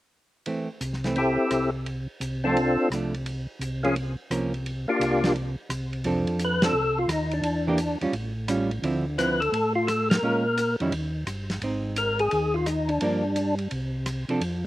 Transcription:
0.46 0.67 E3 soft
0.46 0.68 A3 soft
0.46 0.68 C4 medium
0.46 ride soft
0.81 1.38 C2 medium
0.81 hi-hat pedal soft
0.81 ride medium
0.93 snare soft
1.04 1.16 E3 medium
1.04 1.16 A3 medium
1.04 1.16 C4 medium
1.04 snare soft
1.04 ride soft
1.16 1.70 C4 soft
1.16 1.70 E4 soft
1.16 1.71 G4 soft
1.16 1.71 A4 medium
1.16 ride soft
1.51 2.08 C2 medium
1.51 cross-stick medium
1.51 hi-hat pedal soft
1.51 ride medium
1.86 ride soft
2.20 2.77 C2 medium
2.20 hi-hat pedal medium
2.20 ride medium
2.44 2.56 F3 medium
2.44 2.56 A3 medium
2.44 2.89 C4 medium
2.44 2.89 D4 medium
2.44 2.56 D4 medium
2.44 2.89 F4 medium
2.44 2.89 A4 medium
2.57 ride soft
2.90 3.47 C2 medium
2.90 3.13 F3 soft
2.90 3.13 A3 medium
2.90 3.13 D4 medium
2.90 cross-stick medium
2.90 hi-hat pedal soft
2.90 ride medium
3.14 ride soft
3.26 ride medium
3.59 4.16 C2 medium
3.59 hi-hat pedal soft
3.59 ride medium
3.83 3.95 F3 medium
3.83 3.94 A#3 medium
3.83 3.95 A#3 medium
3.83 3.95 C#4 medium
3.83 3.96 C#4 medium
3.83 3.95 F4 medium
3.83 3.95 G#4 medium
3.83 ride soft
3.96 ride soft
4.30 4.87 C2 medium
4.30 4.51 F3 medium
4.30 4.52 A#3 medium
4.30 4.52 C#4 medium
4.30 cross-stick medium
4.30 hi-hat pedal medium
4.30 ride medium
4.54 ride soft
4.66 ride soft
4.88 5.33 A#3 medium
4.88 5.33 D4 medium
4.88 5.33 F4 medium
4.88 5.33 G4 medium
4.99 5.56 C2 medium
4.99 hi-hat pedal medium
4.99 ride medium
5.24 5.34 F3 medium
5.24 5.35 A#3 medium
5.24 5.35 D4 medium
5.24 snare soft
5.24 ride soft
5.36 ride soft
5.69 6.26 C2 medium
5.69 cross-stick medium
5.69 hi-hat pedal soft
5.69 ride medium
5.93 ride soft
6.04 6.71 F2 medium
6.04 6.58 F3 medium
6.04 6.58 C4 medium
6.04 6.59 D4 medium
6.04 6.59 A4 medium
6.04 ride medium
6.27 ride soft
6.39 hi-hat pedal medium
6.39 ride medium
6.44 6.65 B4 medium
6.62 6.73 F3 medium
6.62 6.74 C4 medium
6.62 6.74 D4 medium
6.62 6.74 A4 medium
6.62 7.00 A4 loud
6.62 snare medium
6.62 ride medium
6.73 7.06 C2 medium
6.98 7.10 F4 medium
7.08 7.41 D#2 medium
7.08 7.34 D#4 medium
7.08 cross-stick medium
7.08 hi-hat pedal medium
7.08 ride medium
7.31 7.98 D4 medium
7.31 ride soft
7.42 7.97 E2 medium
7.42 ride medium
7.67 7.78 E3 medium
7.67 7.78 A#3 medium
7.67 7.78 D4 medium
7.67 7.79 G4 medium
7.78 hi-hat pedal soft
7.78 ride medium
8.01 8.07 E2 soft
8.01 8.13 G3 medium
8.01 8.13 C#4 medium
8.01 8.13 F4 medium
8.01 ride soft
8.12 8.79 A1 medium
8.12 ride medium
8.48 8.69 G3 medium
8.48 8.69 C#4 medium
8.48 8.70 F4 medium
8.48 cross-stick medium
8.48 hi-hat pedal medium
8.48 ride medium
8.71 ride soft
8.82 9.49 D2 medium
8.82 9.04 D3 medium
8.82 9.04 F3 medium
8.82 9.04 C4 medium
8.82 9.04 E4 medium
8.82 ride medium
9.18 9.39 D3 medium
9.18 9.39 F3 medium
9.18 9.39 C4 medium
9.18 9.39 E4 medium
9.18 9.42 B4 medium
9.18 hi-hat pedal medium
9.18 ride medium
9.40 9.73 A4 medium
9.40 ride soft
9.52 10.19 A2 medium
9.52 ride medium
9.76 9.88 F4 medium
9.87 10.09 A4 medium
9.87 cross-stick medium
9.87 hi-hat pedal soft
9.87 ride medium
10.10 10.76 A#4 medium
10.10 snare medium
10.10 ride medium
10.22 10.76 A#2 medium
10.22 10.44 G#3 medium
10.22 10.44 C#4 medium
10.22 10.44 F4 medium
10.58 hi-hat pedal medium
10.58 ride medium
10.80 10.91 F2 medium
10.80 10.92 D#3 soft
10.80 10.92 G3 medium
10.80 10.92 C#4 medium
10.80 10.92 E4 medium
10.80 ride soft
10.91 11.24 D#2 medium
10.91 ride medium
11.26 11.59 G1 medium
11.26 cross-stick medium
11.26 hi-hat pedal soft
11.26 ride medium
11.50 snare soft
11.50 ride soft
11.62 12.28 G#1 medium
11.62 12.60 C4 soft
11.62 12.61 D#4 soft
11.62 ride medium
11.96 12.21 A#4 medium
11.96 hi-hat pedal medium
11.96 ride medium
12.19 12.56 G#4 medium
12.19 ride soft
12.31 12.99 D#2 medium
12.31 ride medium
12.54 12.67 F4 medium
12.66 12.90 D#4 medium
12.66 cross-stick medium
12.66 hi-hat pedal medium
12.66 ride medium
12.88 13.55 D4 medium
12.88 ride soft
13.01 13.68 G2 medium
13.01 13.22 F3 medium
13.01 13.23 A#3 medium
13.01 13.23 D4 medium
13.01 ride medium
13.36 hi-hat pedal medium
13.36 ride medium
13.59 ride soft
13.71 14.25 C2 medium
13.71 ride medium
14.06 cross-stick medium
14.06 hi-hat pedal soft
14.06 ride medium
14.29 14.40 C3 medium
14.29 14.41 F3 medium
14.29 14.41 C4 medium
14.29 14.41 D4 medium
14.29 14.41 A4 medium
14.29 ride soft
14.41 14.66 F2 medium
14.41 ride medium

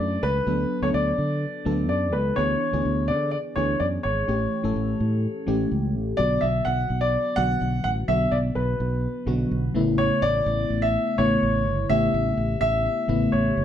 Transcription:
0.00 0.17 F#2 medium
0.00 0.46 F#3 medium
0.00 0.28 A3 medium
0.00 0.49 C#4 medium
0.00 0.47 D4 medium
0.00 0.49 E4 medium
0.00 0.48 A4 medium
0.00 0.24 D5 medium
0.23 0.40 C#2 medium
0.23 0.79 B4 medium
0.46 0.64 D2 medium
0.46 0.73 F#3 medium
0.46 0.74 B3 medium
0.46 0.74 D4 medium
0.46 0.74 A4 medium
0.82 0.91 D2 medium
0.82 1.45 F#3 medium
0.82 1.45 B3 medium
0.82 1.45 D4 medium
0.82 1.45 A4 medium
0.82 0.88 C#5 medium
0.94 1.11 D2 medium
0.94 1.86 D5 medium
1.18 1.44 D3 medium
1.65 1.90 D2 medium
1.65 2.19 F#3 medium
1.65 2.19 B3 medium
1.65 2.20 D4 medium
1.65 2.20 A4 medium
1.89 2.14 F#2 medium
1.89 2.11 D5 medium
2.12 2.31 C#2 medium
2.12 2.38 B4 medium
2.36 2.55 D2 medium
2.36 2.64 E3 medium
2.36 2.64 B3 medium
2.36 2.64 D4 medium
2.36 2.64 G#4 medium
2.36 3.04 C#5 medium
2.72 2.82 D2 loud
2.72 3.35 E3 medium
2.72 3.35 B3 medium
2.72 3.36 D4 medium
2.72 3.36 G#4 medium
2.85 3.11 D2 medium
3.08 3.35 D3 medium
3.08 3.30 D5 medium
3.31 3.37 D5 medium
3.56 3.74 D2 medium
3.56 4.10 E3 medium
3.56 4.10 B3 medium
3.56 4.10 D4 medium
3.56 4.10 G#4 medium
3.56 3.78 C#5 medium
3.80 3.97 F#2 medium
3.80 3.85 D5 medium
4.03 4.22 G#1 medium
4.03 5.66 C#5 medium
4.28 4.45 A1 medium
4.28 4.54 E3 medium
4.28 4.55 A3 medium
4.28 4.55 C#4 medium
4.28 4.55 G4 medium
4.63 4.73 A1 medium
4.63 5.26 E3 medium
4.63 5.26 A3 medium
4.63 5.26 C#4 medium
4.63 5.27 A4 medium
4.76 4.93 A1 medium
5.00 5.26 A2 medium
5.47 5.65 A1 medium
5.47 6.00 E3 medium
5.47 6.00 A3 medium
5.47 6.01 C#4 medium
5.47 6.01 G4 medium
5.72 5.95 C#2 medium
5.95 6.12 A1 medium
6.17 6.36 B1 medium
6.17 6.89 D3 medium
6.17 6.90 F#3 medium
6.17 6.90 B3 medium
6.17 6.90 F#4 medium
6.17 6.42 D5 medium
6.41 6.60 B1 medium
6.41 6.64 E5 medium
6.65 6.84 B1 medium
6.65 6.99 F#5 medium
6.90 7.16 B1 medium
7.01 7.38 D5 medium
7.36 7.55 B1 medium
7.36 7.90 D3 medium
7.36 7.91 F#3 medium
7.36 7.91 B3 medium
7.36 7.91 F#4 medium
7.36 7.82 F#5 loud
7.62 7.79 B1 medium
7.84 8.02 A1 medium
7.84 7.89 F#5 medium
8.08 8.26 B1 loud
8.08 8.80 D3 medium
8.08 8.80 F#3 medium
8.08 8.80 B3 medium
8.08 8.80 F#4 medium
8.08 8.33 E5 loud
8.31 8.49 B1 loud
8.31 8.37 D5 medium
8.55 8.73 B1 medium
8.55 9.71 B4 medium
8.80 9.06 B1 medium
9.26 9.44 B1 medium
9.26 9.75 D3 medium
9.26 9.75 F#3 medium
9.26 9.74 B3 medium
9.26 9.75 F#4 medium
9.51 9.69 B1 medium
9.75 10.10 A1 medium
9.75 10.51 C#3 medium
9.75 10.51 A3 medium
9.75 10.52 B3 medium
9.75 10.52 E4 loud
9.98 10.23 C#5 medium
10.22 10.40 A1 medium
10.22 10.84 D5 loud
10.46 10.64 A1 loud
10.70 10.96 A1 medium
10.82 11.16 E5 loud
11.18 11.36 A1 medium
11.18 11.71 C#3 medium
11.18 11.72 A3 medium
11.18 11.72 B3 medium
11.18 11.72 E4 medium
11.18 11.86 C#5 medium
11.43 11.67 A1 loud
11.67 11.83 G1 medium
11.89 12.07 A1 medium
11.89 12.61 C#3 medium
11.89 12.61 A3 medium
11.89 12.61 B3 medium
11.89 12.61 G4 medium
11.89 12.57 E5 loud
12.14 12.31 A1 loud
12.37 12.55 A1 medium
12.61 12.87 A1 medium
12.61 13.52 E5 loud
13.08 13.26 A1 loud
13.08 13.62 C#3 medium
13.08 13.62 A3 medium
13.08 13.62 B3 medium
13.08 13.63 E4 medium
13.32 13.50 A1 medium
13.32 13.65 C#5 medium
13.57 13.65 F#1 medium

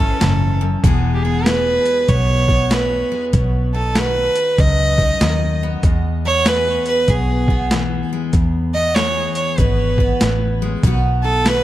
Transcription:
0.00 0.12 G#1 medium
0.00 0.22 E2 medium
0.00 0.81 E3 medium
0.00 0.82 C#4 medium
0.00 0.84 E4 medium
0.00 0.62 A4 medium
0.21 0.75 F#1 medium
0.21 0.61 G#2 medium
0.21 snare loud
0.21 closed hi-hat medium
0.61 0.83 F#2 medium
0.84 1.77 E1 medium
0.84 3.34 E2 medium
0.84 1.46 E3 medium
0.84 3.10 G#3 medium
0.84 1.24 B3 medium
0.84 1.47 G#4 medium
0.84 kick loud
0.84 closed hi-hat medium
1.14 1.24 G4 medium
1.23 2.49 B3 medium
1.23 1.47 G#4 medium
1.46 2.70 E3 medium
1.46 3.32 G#4 medium
1.46 2.11 B4 medium
1.46 snare loud
1.46 closed hi-hat medium
1.86 closed hi-hat medium
2.08 3.02 B1 medium
2.08 2.71 B2 medium
2.08 2.74 C#5 medium
2.08 kick medium
2.08 closed hi-hat soft
2.48 3.74 B3 medium
2.48 kick medium
2.71 3.31 E3 medium
2.71 3.23 B4 medium
2.71 snare loud
2.71 closed hi-hat medium
3.12 3.32 G#3 medium
3.33 4.27 B1 medium
3.33 3.96 B2 medium
3.33 kick loud
3.33 closed hi-hat medium
3.74 4.98 D#4 medium
3.74 3.99 A4 medium
3.95 5.21 D#3 medium
3.95 5.82 F#4 soft
3.95 4.61 B4 loud
3.95 snare loud
3.95 closed hi-hat medium
4.35 closed hi-hat medium
4.58 5.12 C#2 medium
4.58 5.81 F#2 medium
4.58 5.62 D#5 loud
4.58 kick loud
4.58 closed hi-hat medium
4.98 5.82 D#4 medium
4.98 kick medium
5.21 5.75 D#2 medium
5.21 5.82 D#3 medium
5.21 snare loud
5.21 closed hi-hat medium
5.63 6.25 B3 medium
5.83 6.77 E2 medium
5.83 8.33 E2 medium
5.83 kick loud
5.83 closed hi-hat medium
6.25 7.50 B3 medium
6.25 6.49 C#5 loud
6.46 7.71 E3 medium
6.46 8.32 G#4 medium
6.46 6.87 B4 loud
6.46 snare loud
6.46 closed hi-hat medium
6.86 7.11 B4 medium
6.86 closed hi-hat medium
7.08 8.02 B1 medium
7.08 7.72 B2 medium
7.08 7.72 G#4 medium
7.08 kick medium
7.08 closed hi-hat medium
7.48 8.75 B3 medium
7.48 kick medium
7.71 8.32 E3 medium
7.71 snare loud
7.71 closed hi-hat medium
8.13 8.32 G#3 medium
8.33 9.27 E2 medium
8.33 10.84 E2 medium
8.33 kick loud
8.33 closed hi-hat medium
8.75 10.00 B3 medium
8.75 8.96 D#5 medium
8.95 10.20 E3 medium
8.95 10.82 G#4 medium
8.95 9.34 C#5 loud
8.95 snare loud
8.95 closed hi-hat medium
9.35 9.60 C#5 medium
9.35 closed hi-hat medium
9.58 10.12 G#1 medium
9.58 10.22 B2 medium
9.58 10.21 B4 medium
9.58 kick loud
9.58 closed hi-hat medium
9.98 10.86 B3 medium
9.98 kick medium
10.21 10.75 A1 medium
10.21 10.81 E3 medium
10.21 snare loud
10.21 closed hi-hat medium
10.62 10.82 G#3 medium
10.83 11.64 B1 medium
10.83 11.46 B2 medium
10.83 11.47 D#3 medium
10.83 11.64 B3 medium
10.83 11.24 D#4 medium
10.83 11.48 F#4 medium
10.83 kick loud
10.83 closed hi-hat medium
11.23 11.64 D#4 medium
11.23 11.49 A4 medium
11.46 11.64 D#3 medium
11.46 11.64 F#4 medium
11.46 11.64 B4 loud
11.46 snare loud
11.46 closed hi-hat medium

